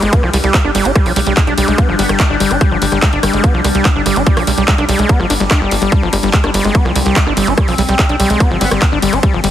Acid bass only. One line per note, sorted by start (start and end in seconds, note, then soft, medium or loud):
0.02 0.14 G#3 loud
0.13 0.23 B3 medium
0.23 0.30 F3 medium
0.33 0.37 G3 loud
0.44 0.56 G3 medium
0.54 0.58 B3 medium
0.64 0.71 D4 medium
0.75 0.87 G3 loud
0.85 0.92 D4 loud
0.96 1.05 G3 medium
1.06 1.12 F3 medium
1.16 1.20 G3 loud
1.27 1.33 G3 loud
1.37 1.43 G#3 medium
1.47 1.54 D4 medium
1.58 1.67 G3 loud
1.68 1.80 G#3 loud
1.78 1.88 B3 medium
1.89 1.95 F3 medium
1.99 2.03 G3 loud
2.09 2.21 G3 medium
2.20 2.24 B3 medium
2.30 2.37 D4 medium
2.40 2.52 G3 loud
2.51 2.57 D4 loud
2.61 2.71 G3 medium
2.71 2.78 F3 medium
2.82 2.86 G3 loud
2.92 2.99 G3 loud
3.02 3.09 G#3 medium
3.13 3.19 D4 medium
3.23 3.33 G3 loud
3.33 3.45 G#3 loud
3.44 3.54 B3 medium
3.54 3.61 F3 medium
3.65 3.68 G3 loud
3.75 3.87 G3 medium
3.85 3.89 B3 medium
3.96 4.02 D4 medium
4.06 4.18 G3 loud
4.16 4.23 D4 loud
4.27 4.36 G3 medium
4.37 4.43 F3 medium
4.47 4.51 G3 loud
4.58 4.64 G3 loud
4.68 4.74 G#3 medium
4.78 4.85 D4 medium
4.89 4.98 G3 loud
4.99 5.11 G#3 loud
5.09 5.19 B3 medium
5.20 5.26 F3 medium
5.30 5.34 D4 medium
5.40 5.44 G3 loud
5.51 5.61 D4 loud
5.61 5.71 G3 medium
5.71 5.75 G3 medium
5.82 5.92 G3 loud
6.02 6.09 F3 medium
6.13 6.17 G3 loud
6.23 6.30 G3 loud
6.33 6.40 G#3 medium
6.44 6.50 D4 medium
6.54 6.64 G3 loud
6.65 6.76 G#3 loud
6.75 6.85 B3 medium
6.85 6.92 F3 medium
6.96 6.99 G3 loud
7.06 7.18 G3 medium
7.16 7.20 B3 medium
7.27 7.33 D4 medium
7.37 7.49 G3 loud
7.47 7.54 D4 loud
7.58 7.67 G3 medium
7.68 7.75 F3 medium
7.78 7.82 G3 loud
7.89 7.95 G3 loud
7.99 8.06 G#3 medium
8.09 8.16 D4 medium
8.20 8.29 G3 loud
8.30 8.42 G#3 loud
8.40 8.50 B3 medium
8.51 8.57 F3 medium
8.61 8.65 G3 loud
8.71 8.83 G3 medium
8.82 8.86 B3 medium
8.92 8.99 D4 medium
9.02 9.14 G3 loud
9.13 9.19 D4 loud
9.23 9.33 G3 medium
9.33 9.40 F3 medium
9.44 9.48 G3 loud